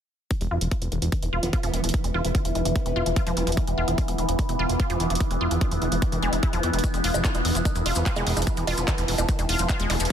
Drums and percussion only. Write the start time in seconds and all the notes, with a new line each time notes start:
0.31 kick, closed hi-hat
0.41 closed hi-hat
0.61 closed hi-hat
0.71 kick, closed hi-hat
0.82 closed hi-hat
0.92 closed hi-hat
1.02 closed hi-hat
1.12 kick, closed hi-hat
1.23 closed hi-hat
1.43 closed hi-hat
1.53 kick, closed hi-hat
1.63 closed hi-hat
1.74 closed hi-hat
1.84 closed hi-hat
1.89 closed hi-hat
1.94 kick, closed hi-hat
2.04 closed hi-hat
2.25 closed hi-hat
2.35 kick, closed hi-hat
2.45 closed hi-hat
2.55 closed hi-hat
2.65 closed hi-hat
2.76 kick, closed hi-hat
2.86 closed hi-hat
3.06 closed hi-hat
3.16 kick, closed hi-hat
3.27 closed hi-hat
3.37 closed hi-hat
3.47 closed hi-hat
3.52 closed hi-hat
3.57 kick, closed hi-hat
3.67 closed hi-hat
3.88 closed hi-hat
3.98 kick, closed hi-hat
4.08 closed hi-hat
4.18 closed hi-hat
4.29 closed hi-hat
4.39 kick, closed hi-hat
4.49 closed hi-hat
4.69 closed hi-hat
4.80 kick, closed hi-hat
4.90 closed hi-hat
5.00 closed hi-hat
5.10 closed hi-hat
5.15 closed hi-hat
5.20 kick
5.31 closed hi-hat
5.51 closed hi-hat
5.61 kick, closed hi-hat
5.71 closed hi-hat
5.82 closed hi-hat
5.92 closed hi-hat
6.02 kick, closed hi-hat
6.12 closed hi-hat
6.22 closed hi-hat
6.33 closed hi-hat
6.43 kick, closed hi-hat
6.53 closed hi-hat
6.63 closed hi-hat
6.73 closed hi-hat
6.79 closed hi-hat
6.84 kick, high bongo, maracas
6.94 closed hi-hat, maracas
7.04 open hi-hat
7.14 closed hi-hat, high bongo, maracas
7.25 kick, clap, closed hi-hat, maracas
7.34 closed hi-hat, high bongo, maracas
7.45 open hi-hat
7.55 closed hi-hat, maracas
7.65 kick, closed hi-hat, high bongo, maracas
7.75 closed hi-hat, maracas
7.86 open hi-hat, high bongo
7.95 closed hi-hat, maracas
8.06 kick, clap, closed hi-hat, maracas
8.16 closed hi-hat, high bongo, maracas
8.27 open hi-hat
8.37 closed hi-hat, high bongo, maracas
8.42 closed hi-hat
8.47 kick, closed hi-hat, maracas
8.57 closed hi-hat, maracas
8.67 open hi-hat, high bongo
8.77 closed hi-hat, maracas
8.88 kick, clap, closed hi-hat, high bongo, maracas
8.98 closed hi-hat, maracas
9.08 open hi-hat
9.18 closed hi-hat, high bongo, maracas
9.29 kick, closed hi-hat, maracas
9.39 closed hi-hat, high bongo, maracas
9.49 open hi-hat
9.59 closed hi-hat, maracas
9.69 kick, clap, closed hi-hat, high bongo, maracas
9.80 closed hi-hat, maracas
9.90 open hi-hat, high bongo
10.00 closed hi-hat, maracas
10.05 closed hi-hat